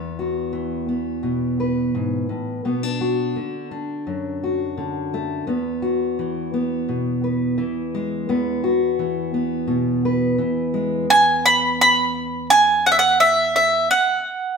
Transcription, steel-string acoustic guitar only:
0.00 1.94 E2 soft
0.00 0.88 B3 soft
0.19 1.60 F#4 soft
0.53 2.60 E3 soft
0.89 2.65 B3 soft
1.23 2.29 B2 soft
1.60 3.01 B4 soft
1.95 2.30 G#2 soft
2.29 2.64 A2 soft
2.65 3.36 B2 soft
2.65 2.83 B3 soft
2.83 3.70 D4 soft
3.01 4.42 F#4 soft
3.36 4.76 D3 soft
3.71 5.43 D4 soft
4.07 5.43 F#2 soft
4.43 5.44 F#4 soft
4.77 5.48 D3 soft
5.14 5.44 A3 soft
5.47 8.28 E2 soft
5.47 6.53 B3 soft
5.82 7.23 F#4 soft
6.19 7.57 E3 soft
6.54 8.29 B3 soft
6.89 7.59 B2 soft
7.24 8.63 B4 soft
7.58 8.67 E3 soft
7.95 8.67 G#3 soft
8.29 13.88 E2 medium
8.29 9.33 B3 soft
8.64 10.04 F#4 soft
8.99 10.37 E3 soft
9.34 13.88 B3 soft
9.67 10.39 B2 soft
10.05 11.06 B4 soft
10.38 11.05 E3 soft
10.74 11.05 G#3 soft

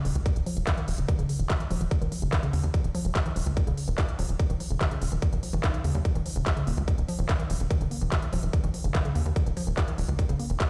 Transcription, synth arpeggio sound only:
0.05 0.09 C#3 medium
0.15 0.19 D#3 medium
0.26 0.30 D#3 medium
0.36 0.38 D#3 medium
0.46 0.52 F3 loud
0.57 0.59 D#3 medium
0.67 0.73 D#3 medium
0.77 0.81 D#3 loud
0.88 0.90 F3 medium
0.98 1.02 C#3 medium
1.08 1.12 D#3 loud
1.19 1.23 C#3 loud
1.29 1.33 C#3 medium
1.40 1.43 D#3 medium
1.50 1.54 D#3 medium
1.60 1.62 D#3 medium
1.71 1.76 F3 loud
1.81 1.83 D#3 medium
1.91 1.97 D#3 medium
2.02 2.05 D#3 loud
2.12 2.14 F3 medium
2.22 2.26 C#3 medium
2.33 2.36 D#3 loud
2.43 2.47 C#3 loud
2.53 2.57 C#3 medium
2.64 2.67 D#3 medium
2.74 2.78 D#3 medium
2.84 2.87 D#3 medium
2.95 3.00 F3 loud
3.05 3.07 D#3 medium
3.15 3.21 D#3 medium
3.26 3.29 D#3 loud
3.36 3.38 F3 medium
3.46 3.50 C#3 medium
3.57 3.61 D#3 loud
3.67 3.71 C#3 loud
3.77 3.81 C#3 medium
3.88 3.92 D#3 medium
3.98 4.02 D#3 medium
4.08 4.11 D#3 medium
4.19 4.24 F3 loud
4.29 4.31 D#3 medium
4.40 4.45 D#3 medium
4.50 4.54 D#3 loud
4.60 4.62 F3 medium
4.71 4.74 C#3 medium
4.81 4.85 D#3 loud
4.91 4.95 C#3 loud
5.02 5.05 C#3 medium
5.12 5.16 D#3 medium
5.22 5.26 D#3 medium
5.33 5.35 D#3 medium
5.43 5.49 F3 medium
5.53 5.57 D#3 loud
5.64 5.66 D#4 medium
5.74 5.78 D#3 medium
5.84 5.88 C#3 loud
5.95 5.98 F#3 medium
6.05 6.11 D#3 medium
6.15 6.19 D#3 loud
6.26 6.28 F3 medium
6.36 6.40 C#3 medium
6.46 6.50 D#3 loud
6.57 6.61 C#3 loud
6.67 6.71 A#3 medium
6.77 6.81 D#3 medium
6.88 6.92 D#3 medium
6.98 7.00 D#3 medium
7.08 7.14 F3 loud
7.19 7.21 D#3 medium
7.29 7.35 D#3 medium
7.40 7.43 D#3 loud
7.50 7.52 F3 medium
7.60 7.64 C#3 medium
7.71 7.74 D#3 loud
7.81 7.85 C#3 loud
7.91 7.95 A#3 medium
8.02 8.05 D#3 medium
8.12 8.16 D#3 medium
8.22 8.25 D#3 medium
8.33 8.38 F3 loud
8.43 8.45 D#3 medium
8.53 8.59 D#3 medium
8.64 8.67 D#3 loud
8.74 8.76 F3 medium
8.84 8.88 C#3 medium
8.95 8.98 D#3 loud
9.05 9.09 C#3 loud
9.15 9.19 A#3 medium
9.26 9.29 D#3 medium
9.36 9.40 D#3 medium
9.46 9.49 D#3 medium
9.57 9.62 F3 loud
9.67 9.69 D#3 medium
9.77 9.83 D#3 medium
9.88 9.92 D#3 loud
9.98 10.00 F3 medium
10.09 10.12 C#3 medium
10.19 10.23 D#3 loud
10.29 10.33 C#3 loud
10.40 10.43 A#3 medium
10.50 10.54 D#3 medium
10.60 10.64 D#3 medium

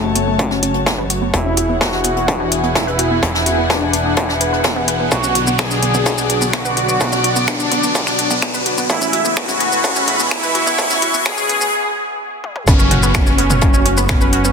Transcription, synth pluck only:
0.04 0.10 C#4 medium
0.15 0.19 B3 medium
0.27 0.31 B3 medium
0.39 0.43 C#4 medium
0.51 0.57 C#4 loud
0.63 0.69 C#4 medium
0.75 0.84 B3 medium
0.86 0.95 B3 medium
0.98 1.02 B4 loud
1.10 1.14 F#4 medium
1.22 1.25 B3 medium
1.34 1.37 B3 medium
1.45 1.52 C#4 medium
1.57 1.66 F#4 medium
1.69 1.78 B3 medium
1.81 1.90 B3 medium
1.93 1.99 D4 medium
2.05 2.08 B3 medium
2.16 2.20 B3 medium
2.28 2.32 D4 medium
2.40 2.46 D4 loud
2.52 2.58 D4 medium
2.64 2.73 B3 medium
2.75 2.84 B3 medium
2.87 2.91 B4 loud
2.99 3.03 F#4 medium
3.11 3.14 B3 medium
3.23 3.26 B3 medium
3.34 3.40 C#4 medium
3.46 3.55 F#4 medium
3.58 3.67 B3 medium
3.70 3.79 B3 medium
3.82 3.88 D4 medium
3.94 3.97 B3 medium
4.05 4.09 B3 medium
4.17 4.21 D4 medium
4.29 4.35 D4 loud
4.41 4.50 B4 medium
4.53 4.59 B4 medium
4.64 4.73 B3 medium
4.76 4.85 B3 loud
4.88 4.94 B4 medium
5.00 5.06 B3 medium
5.12 5.15 B3 medium
5.23 5.29 C#4 medium
5.35 5.44 F#4 medium
5.47 5.56 B3 medium
5.59 5.68 B3 medium
5.71 5.77 D4 medium
5.82 5.86 B3 medium
5.94 5.98 B3 medium
6.06 6.10 D4 medium
6.18 6.24 D4 loud
6.30 6.36 D4 medium
6.41 6.51 B3 medium
6.53 6.57 B3 loud
6.65 6.69 B4 loud
6.77 6.81 F#4 medium
6.89 6.92 B3 medium
7.01 7.04 B3 medium
7.12 7.18 C#4 medium
7.24 7.33 F#4 medium
7.36 7.45 B3 medium
7.48 7.57 B3 medium
7.60 7.66 D4 medium
7.71 7.75 B3 medium
7.83 7.87 B3 medium
7.95 7.99 D4 medium
8.07 8.13 D4 loud
8.19 8.25 D4 medium
8.31 8.40 B3 medium
8.42 8.46 B3 loud
8.54 8.58 B4 loud
8.66 8.70 F#4 medium
8.78 8.81 B3 medium
8.90 8.93 B3 medium
9.01 9.07 C#4 medium
9.13 9.22 F#4 medium
9.25 9.34 B3 medium
9.37 9.46 B3 medium
9.49 9.55 C#4 medium
9.60 9.64 B3 medium
9.72 9.76 B3 medium
9.84 9.88 C#4 medium
9.96 10.02 C#4 loud
10.08 10.14 C#4 medium
10.19 10.29 B3 medium
10.31 10.35 B3 loud
10.43 10.47 B4 loud
10.55 10.59 F#4 medium
10.67 10.70 B3 medium
10.78 10.82 B3 medium
10.90 10.96 C#4 medium
11.02 11.11 F#4 medium
11.14 11.23 B3 medium
11.26 11.35 B3 medium
11.38 11.44 C#4 medium
11.49 11.53 B3 medium
11.61 11.65 B3 medium
12.68 12.71 B3 medium
12.68 12.71 B4 medium
12.79 12.85 C#4 medium
12.79 12.85 C#5 medium
12.91 13.00 F#4 medium
12.91 13.00 F#5 medium
13.03 13.12 B3 medium
13.03 13.12 B4 medium
13.15 13.24 B3 medium
13.15 13.24 B4 medium
13.27 13.33 C#4 medium
13.27 13.33 C#5 medium
13.38 13.42 B3 medium
13.38 13.42 B4 medium
13.50 13.54 B3 medium
13.50 13.54 B4 medium
13.62 13.66 C#4 medium
13.62 13.66 C#5 medium
13.74 13.80 C#4 loud
13.74 13.80 C#5 medium
13.86 13.92 C#4 medium
13.86 13.92 C#5 medium
13.97 14.06 B3 medium
13.97 14.06 B4 medium
14.09 14.13 B3 loud
14.09 14.13 B4 medium
14.21 14.25 B4 loud
14.21 14.25 B5 medium
14.33 14.36 F#4 medium
14.33 14.36 F#5 medium
14.45 14.48 B3 medium
14.45 14.48 B4 medium

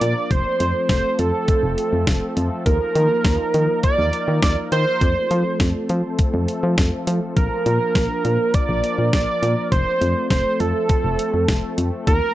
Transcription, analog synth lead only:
0.00 0.33 D5 loud
0.31 0.89 C5 loud
0.90 1.21 C5 medium
1.19 2.37 A4 medium
2.66 3.80 A#4 loud
3.84 4.39 D5 loud
4.43 4.56 D5 loud
4.72 5.56 C5 medium
7.37 8.56 A#4 loud
8.54 9.12 D5 loud
9.13 9.68 D5 loud
9.72 10.27 C5 loud
10.31 10.62 C5 medium
10.60 11.78 A4 medium
12.07 12.34 A#4 loud

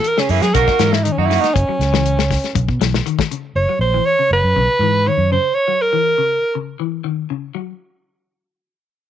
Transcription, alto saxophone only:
0.07 0.21 A#4 medium
0.20 0.32 C#4 medium
0.31 0.44 E4 medium
0.42 0.55 G#4 medium
0.54 0.95 A#4 medium
0.93 1.05 E4 medium
1.04 1.14 D#4 medium
1.12 1.20 C#4 medium
1.19 1.28 D#4 medium
1.26 1.43 E4 medium
1.41 1.55 D#4 medium
1.54 2.55 C#4 medium
3.56 3.79 C#5 medium
3.81 4.07 C5 medium
4.06 4.31 C#5 loud
4.33 5.09 B4 loud
5.08 5.32 C#5 loud
5.32 5.57 C5 medium
5.55 5.83 C#5 loud
5.82 6.56 A#4 medium

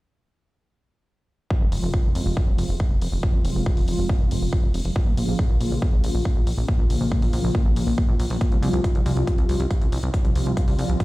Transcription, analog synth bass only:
1.61 1.68 F1 medium
1.72 1.79 F1 medium
1.83 1.90 F1 medium
2.04 2.11 F1 medium
2.15 2.22 F1 loud
2.26 2.33 F1 medium
2.48 2.54 F1 medium
2.58 2.65 F1 loud
2.69 2.76 F1 medium
2.91 2.97 F1 medium
3.01 3.08 F1 medium
3.12 3.19 F1 medium
3.34 3.41 F1 medium
3.45 3.51 F1 loud
3.56 3.62 F1 medium
3.77 3.84 F1 medium
3.88 3.95 F1 loud
3.99 4.05 F1 medium
4.20 4.27 F1 medium
4.31 4.38 F1 loud
4.42 4.49 F1 medium
4.64 4.70 F1 medium
4.74 4.81 F1 loud
4.85 4.92 F1 medium
5.07 5.13 A#1 medium
5.17 5.24 A#1 loud
5.28 5.35 A#1 medium
5.50 5.56 A#1 medium
5.61 5.67 A#1 loud
5.71 5.78 A#1 medium
5.93 6.00 A#1 medium
6.04 6.10 A#1 loud
6.15 6.21 A#1 medium
6.36 6.43 A#1 medium
6.47 6.54 A#1 medium
6.58 6.64 A#1 medium
6.79 6.86 A#1 medium
6.90 6.97 A#1 loud
7.01 7.08 A#1 medium
7.22 7.29 A#1 medium
7.33 7.40 A#1 loud
7.44 7.51 A#1 medium
7.65 7.72 A#1 medium
7.76 7.83 A#1 loud
7.87 7.94 A#1 medium
8.09 8.15 A#1 medium
8.20 8.26 A#1 medium
8.30 8.37 A#1 medium
8.52 8.59 C2 medium
8.62 8.69 C2 loud
8.73 8.80 C2 medium
8.95 9.02 C2 medium
9.06 9.13 C2 loud
9.17 9.23 C2 medium
9.38 9.45 C2 medium
9.49 9.56 C2 loud
9.60 9.67 C2 medium
9.81 9.88 C2 medium
9.92 9.99 C2 medium
10.03 10.10 C2 medium
10.25 10.31 C2 medium
10.35 10.42 C2 loud
10.46 10.53 C2 medium
10.68 10.74 C2 medium
10.78 10.85 C2 loud
10.89 10.96 C2 medium

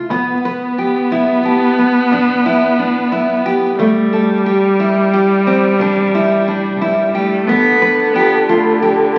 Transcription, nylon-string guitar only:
0.11 0.38 B3 medium
0.45 0.72 B4 medium
0.78 1.05 G4 medium
1.12 1.39 E4 medium
1.45 1.72 G4 medium
1.79 2.06 B3 medium
2.13 2.39 D4 medium
2.46 2.73 E4 medium
2.79 3.06 D4 medium
3.12 3.39 E4 medium
3.46 3.73 G4 medium
3.79 4.06 A3 medium
4.13 4.40 A4 medium
4.46 4.73 G4 medium
4.80 5.07 E4 medium
5.13 5.41 G4 medium
5.47 5.74 C4 medium
5.81 6.08 D4 medium
6.15 6.41 E4 medium
6.48 6.75 D4 medium
6.81 7.08 E4 medium
7.15 7.42 G4 medium
7.49 7.76 B3 medium
7.82 8.09 B4 medium
8.16 8.42 G4 medium
8.49 8.76 F4 medium
8.82 9.09 G4 medium

